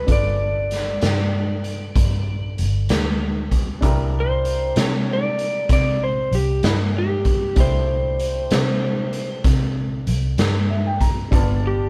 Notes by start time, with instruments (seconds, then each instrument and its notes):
0.07 fingered electric bass G1, upright piano D4 F4 A4, kick, closed hi-hat
0.11 upright piano B4, electric slide guitar D5
0.71 snare, closed hi-hat
1.01 fingered electric bass G2, snare, closed hi-hat
1.64 closed hi-hat
1.96 fingered electric bass G2, kick, closed hi-hat
2.58 fingered electric bass G1, closed hi-hat
2.89 fingered electric bass D2, snare, closed hi-hat
3.51 kick, closed hi-hat
3.81 fingered electric bass C2, upright piano D4 E4 G4, kick, closed hi-hat
3.85 upright piano A#4
4.20 electric slide guitar C5
4.45 closed hi-hat
4.76 fingered electric bass C3, snare, closed hi-hat
4.80 electric slide guitar C#5
5.13 electric slide guitar D5
5.39 closed hi-hat
5.69 fingered electric bass C3, electric slide guitar D5, kick, snare, closed hi-hat
6.04 electric slide guitar C5
6.31 fingered electric bass C2, electric slide guitar G4, closed hi-hat
6.63 fingered electric bass G2, electric slide guitar E4, snare, closed hi-hat
6.98 electric slide guitar G4
7.25 kick, closed hi-hat
7.56 fingered electric bass C2, upright piano A3 D4 E4 G4, kick, closed hi-hat
7.60 electric slide guitar C5
8.19 closed hi-hat
8.51 fingered electric bass C3, snare, closed hi-hat
9.13 closed hi-hat
9.44 fingered electric bass C3, kick, snare, closed hi-hat
10.07 fingered electric bass C2, closed hi-hat
10.38 fingered electric bass G2, snare, closed hi-hat
10.70 upright piano E5
10.87 upright piano G5
11.01 upright piano A#5, kick, closed hi-hat
11.31 fingered electric bass G1, upright piano B3 D4 F4 A5, kick, closed hi-hat
11.67 electric slide guitar G4